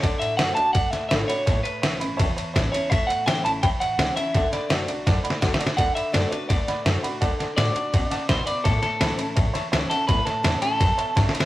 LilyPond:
<<
  \new Staff \with { instrumentName = "Upright piano" } { \time 4/4 \key d \major \tempo 4 = 167 <d'' fis'' a''>8 <d'' fis'' a''>8 <d'' fis'' a''>8 <d'' fis'' a''>8 <d'' fis'' a''>8 <d'' fis'' a''>8 <d'' fis'' b''>8 <d'' fis'' b''>8 | <cis'' e'' a''>8 <cis'' e'' a''>8 <cis'' e'' fis''>8 <cis'' e'' b''>8 <cis'' e'' a''>8 <cis'' e'' a''>8 <cis'' e'' a''>8 <cis'' e'' a''>8 | <cis'' e'' a''>8 <cis'' e'' fis''>8 <cis'' e'' a''>8 <cis'' e'' b''>8 <cis'' e'' b''>8 <cis'' e'' a''>8 <cis'' e'' fis''>8 <cis'' e'' a''>8 | <d'' fis'' a''>8 <d'' fis'' b''>8 <d'' fis'' a''>8 <d'' fis'' a''>8 <d'' fis'' a''>8 <d'' fis'' b''>8 <d'' fis'' a''>8 <d'' fis'' a''>8 |
<d'' fis'' a''>8 <d'' fis'' b''>8 <d'' fis'' a''>8 <d'' fis'' a''>8 <d'' fis'' a''>8 <d'' fis'' b''>8 <d'' fis'' a''>8 <d'' fis'' b''>8 | <d'' fis'' a''>8 <d'' fis'' a''>8 <d'' fis'' a''>8 <d'' fis'' a''>8 <d'' fis'' a''>8 <d'' fis'' a''>8 <d'' fis'' b''>8 <d'' fis'' b''>8 | <cis'' e'' a''>8 <cis'' a''>8 <cis'' e'' b''>8 <cis'' e'' a''>8 <cis'' e'' a''>8 <cis'' e'' a''>8 <cis'' e'' a''>8 <cis'' e'' fis''>8 | <cis'' e'' a''>8 <cis'' e'' a''>8 <cis'' e'' a''>8 <cis'' e'' a''>8 <cis'' e'' a''>8 <cis'' e'' a''>8 <cis'' e'' a''>8 <cis'' e'' a''>8 | }
  \new Staff \with { instrumentName = "Clean electric guitar" } { \time 4/4 \key d \major d''8 e''8 fis''8 a''8 fis''8 e''8 e''8 cis''8~ | cis''8 b'2. cis''8 | e''8 fis''8 g''8 a''8 g''8 fis''4 e''8~ | e''8 d''2. r8 |
fis''8 e''8 d''8 b'8 d''4 r4 | r4 d''2 c''8 d''8 | a'8 a'2 r4 a'8 | b'8 a'4 a'2 r8 | }
  \new Staff \with { instrumentName = "Steel-string acoustic guitar" } { \time 4/4 \key d \major << { r4 <d a d' fis'>8 <d' fis'>8 r4 <d a d' fis'>8 <d' fis'>8 | r4 <e g cis' e'>8 <cis' e'>8 r4 <e g cis' e'>8 <cis' e'>8 | r4 <e g cis' e'>8 <cis' e'>8 r4 <e g cis' e'>8 <cis' e'>8 | r4 <d a d' fis'>8 <d' fis'>8 r4 <d a d' fis'>8 <d' fis'>8 |
r4 <d a d' fis'>8 <d' fis'>8 r4 <d a d' fis'>8 <d' fis'>8 | r4 <d a d' fis'>8 <d' fis'>8 r2 | r4 <e g cis' e'>8 <cis' e'>8 r4 <e g cis' e'>8 <cis' e'>8 | r4 <e g cis' e'>8 <cis' e'>8 r2 | } \\ { d2 a,2 | a,2 e,2 | a,2 e,2 | d2 a,2 |
d2 a,2 | d2 cis4 b,4 | a,2 e,2 | a,2 b,4 cis4 | } >> }
  \new Staff \with { instrumentName = "Upright bass" } { \clef bass \time 4/4 \key d \major d,8 a,8 fis,8 d,8 g,8 d,8 gis,,8 r8 | a,,8 r8 cis,8 g,,8 cis,8 r8 a,,8 r8 | a,,8 e,8 cis,8 a,,8 d,8 a,,8 cis,8 r8 | d,8 r8 fis,8 b,,8 fis,8 r8 d,8 r8 |
d,8 r8 fis,8 r8 d,8 r8 fis,8 r8 | d,8 r8 a,8 r8 b,8 r8 b,8 r8 | a,,8 r8 cis,8 r8 a,,8 r8 cis,8 r8 | a,,8 r8 e,8 r8 fis,8 r8 g,8 r8 | }
  \new DrumStaff \with { instrumentName = "Drums" } \drummode { \time 4/4 <bd cymr sn>8 cymr8 <cymr sn>8 cymr8 <bd cymr>8 <cymr sn>8 <cymr sn>8 cymr8 | <bd cymr sn>8 cymr8 <cymr sn>8 cymr8 <bd cymr>8 cymr8 <bd cymr sn>8 cymr8 | <bd cymr sn>8 cymr8 <cymr sn>8 cymr8 <bd cymr sn>8 cymr8 <cymr sn>8 cymr8 | <bd cymr sn>8 <cymr sn>8 <cymr sn>8 cymr8 \tuplet 3/2 { <bd cymr sn>16 r16 r16 cymr16 sn16 r16 <bd cymr sn>16 r16 sn16 cymr16 sn16 r16 } |
<bd cymr sn>8 cymr8 <cymr sn>8 cymr8 <bd cymr sn>8 <cymr sn>8 <cymr sn>8 cymr8 | <bd cymr sn>8 <cymr sn>8 <cymr sn>8 cymr8 <bd cymr sn>8 <cymr sn>8 <bd cymr sn>8 cymr8 | <bd cymr sn>8 <cymr sn>8 <cymr sn>8 cymr8 <bd cymr>8 <cymr sn>8 <cymr sn>8 cymr8 | <bd cymr>8 <cymr sn>8 <cymr sn>8 cymr8 <bd cymr sn>8 cymr8 \tuplet 3/2 { <bd cymr sn>16 r16 sn16 cymr16 sn16 r16 } | }
>>